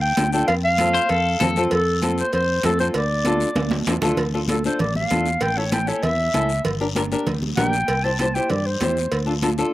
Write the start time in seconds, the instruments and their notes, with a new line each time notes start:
Already playing: fingered electric bass D2
0.01 clarinet G5
0.17 fingered electric bass D2, nylon-string guitar D4 F4 A4, cowbell, high conga, short guiro
0.32 nylon-string guitar D4 F4 A4, clarinet G5, short guiro
0.47 fingered electric bass F2, clarinet F5, cowbell, high conga, long guiro
0.64 clarinet F5
0.78 nylon-string guitar C4 F4 A4, cowbell, high conga, short guiro
0.94 clean electric guitar C5, short guiro
1.09 fingered electric bass F2, clean electric guitar A4, cowbell, high conga, long guiro
1.40 fingered electric bass F2, nylon-string guitar C4 F4 A4, clean electric guitar A4, cowbell, high conga, low conga, short guiro
1.56 nylon-string guitar C4 F4 A4, short guiro
1.71 fingered electric bass F2, clarinet A4, cowbell, high conga, long guiro
2.02 nylon-string guitar C4 F4 A4, cowbell, high conga, short guiro
2.18 clarinet C5, short guiro
2.33 fingered electric bass F2, clarinet C5, cowbell, high conga, long guiro
2.63 fingered electric bass F2, nylon-string guitar C4 F4 A4, clarinet A4, cowbell, high conga, low timbale, short guiro
2.79 nylon-string guitar C4 F4 A4, clarinet C5, short guiro
2.94 fingered electric bass D2, clarinet D5, cowbell, high conga, long guiro
3.25 nylon-string guitar D4 F4 A4, cowbell, high conga, short guiro
3.40 short guiro
3.56 fingered electric bass D2, cowbell, high conga, high timbale, long guiro
3.71 high conga, low timbale
3.87 fingered electric bass E2, nylon-string guitar D4 F4 A4, cowbell, low timbale, short guiro
4.02 fingered electric bass D2, nylon-string guitar D4 F4 A4, low conga, low timbale, short guiro
4.17 fingered electric bass D2, cowbell, low conga, long guiro
4.34 nylon-string guitar D4 F4 A4
4.48 nylon-string guitar D4 F4 A4, clarinet A4, cowbell, high conga, short guiro
4.64 nylon-string guitar D4 F4 A4, clarinet C5, short guiro
4.79 fingered electric bass A1, clarinet D5, cowbell, low conga, long guiro
4.95 clarinet F5, high conga
5.10 fingered electric bass E2, nylon-string guitar D4 F4 A4, cowbell, high conga, short guiro
5.26 short guiro
5.40 fingered electric bass A1, clarinet G5, cowbell, low conga, long guiro
5.57 nylon-string guitar C#4 E4 A4, clarinet C#5
5.71 nylon-string guitar C#4 E4 A4, clarinet G5, cowbell, high conga, short guiro
5.87 nylon-string guitar C#4 E4 A4, clarinet C#5, short guiro
6.03 fingered electric bass E2, clarinet E5, cowbell, low conga, long guiro
6.34 fingered electric bass C#2, nylon-string guitar C#4 E4 A4, cowbell, high conga, short guiro
6.49 short guiro
6.65 fingered electric bass G1, cowbell, low conga, long guiro
6.81 nylon-string guitar D4 G4 A#4
6.95 nylon-string guitar D4 G4 A#4, cowbell, high conga, short guiro
7.12 nylon-string guitar D4 G4 A#4, short guiro
7.27 fingered electric bass D2, cowbell, low conga, long guiro
7.43 high conga
7.57 fingered electric bass A#1, nylon-string guitar D4 G4 A#4, clarinet G5, cowbell, high conga, low conga, low timbale, short guiro
7.73 short guiro
7.88 fingered electric bass C2, cowbell, long guiro
8.04 nylon-string guitar E4 G4 C5, clarinet A5
8.19 nylon-string guitar E4 G4 C5, clarinet A5, cowbell, high conga, short guiro
8.34 nylon-string guitar E4 G4 C5, clarinet G5, short guiro
8.50 fingered electric bass G2, clarinet D5, cowbell, low conga, long guiro
8.66 clarinet C5
8.81 fingered electric bass E2, nylon-string guitar E4 G4 C5, cowbell, high conga, low conga, low timbale, short guiro
8.97 short guiro
9.12 fingered electric bass D2, cowbell, long guiro
9.26 nylon-string guitar D4 F4 A4
9.42 nylon-string guitar D4 F4 A4, cowbell, high conga, short guiro
9.58 nylon-string guitar D4 F4 A4, short guiro